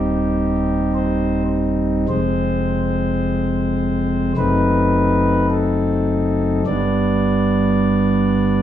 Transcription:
0.00 2.06 D#1 medium
0.00 2.06 D#2 medium
0.00 2.06 G3 soft
0.00 2.06 C4 soft
0.00 2.06 D#4 soft
0.00 0.93 G4 loud
0.95 1.43 C5 medium
2.09 4.33 F1 medium
2.09 4.33 F2 medium
2.09 4.33 G#3 soft
2.09 4.33 C4 medium
2.09 4.33 C5 loud
4.37 6.62 F#1 medium
4.37 6.62 F#2 medium
4.37 6.62 A3 medium
4.37 6.62 C4 medium
4.37 6.62 D#4 medium
4.37 5.46 B4 loud
5.50 6.63 A4 medium
6.66 8.62 G1 medium
6.66 8.62 G2 medium
6.66 8.62 G3 medium
6.66 8.62 B3 medium
6.66 8.62 D4 medium
6.66 8.62 D5 loud

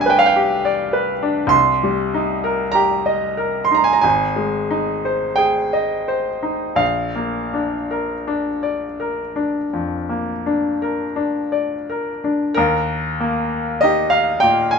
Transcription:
0.00 1.46 C2 medium
0.00 1.56 G3 soft
0.00 1.23 D4 soft
0.00 0.36 G4 soft
0.00 0.06 B4 medium
0.00 0.65 D5 medium
0.00 0.10 G5 medium
0.00 1.56 G#5 medium
0.06 0.53 B4 soft
0.06 0.18 G5 medium
0.19 0.27 F5 medium
0.26 0.35 G5 medium
0.36 0.83 G4 medium
0.65 1.12 D5 medium
0.93 1.41 B4 soft
1.23 1.53 D4 medium
1.47 3.97 C2 medium
1.47 2.74 C6 medium
1.83 2.32 G3 soft
2.14 2.64 D#4 soft
2.44 2.94 A#4 soft
2.72 3.26 G4 medium
2.72 3.63 A#5 medium
3.06 3.58 D#5 medium
3.37 3.90 A#4 soft
3.65 3.75 C6 medium
3.71 4.05 D#4 soft
3.71 3.85 A#5 medium
3.84 3.94 G#5 medium
3.93 4.04 A#5 medium
4.01 6.76 G#1 medium
4.01 5.38 G#5 medium
4.36 4.91 G#3 soft
4.71 5.25 D#4 soft
5.05 5.60 C5 soft
5.36 5.94 G#4 soft
5.36 6.78 G5 medium
5.73 6.29 D#5 medium
6.08 6.65 C5 soft
6.43 6.80 D#4 soft
6.76 9.66 A#1 medium
6.76 11.14 F5 medium
7.16 7.75 A#3 soft
7.54 8.13 D4 soft
7.91 8.49 A#4 soft
8.28 8.85 D4 soft
8.63 9.21 D5 soft
9.00 9.57 A#4 soft
9.36 9.94 D4 soft
9.73 10.31 F2 soft
10.09 10.67 A#3 soft
10.46 11.03 D4 soft
10.82 11.39 A#4 soft
11.16 11.74 D4 soft
11.52 12.10 D5 soft
11.90 12.44 A#4 soft
12.24 12.57 D4 soft
12.54 14.79 D#2 medium
12.54 13.81 A#4 medium
13.20 14.19 A#3 soft
13.81 14.39 D#4 soft
13.81 14.39 G4 soft
13.81 14.12 D#5 medium
14.10 14.41 F5 medium
14.40 14.79 A#2 soft
14.40 14.71 G5 medium
14.71 14.79 G#5 medium

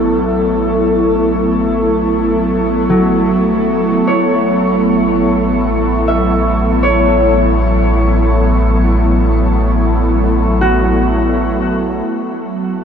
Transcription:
0.00 4.02 A1 medium
0.00 12.04 F#3 medium
0.00 12.05 A3 medium
0.00 12.08 B3 medium
0.00 12.08 E4 medium
0.00 12.07 A4 medium
2.90 4.12 F#3 medium
4.07 12.02 A1 loud
4.07 6.28 C#5 medium
6.08 7.80 E5 medium
6.83 11.25 C#5 medium
10.61 12.84 F#4 medium
12.05 12.84 A1 medium
12.05 12.84 F#3 medium
12.05 12.84 A3 medium

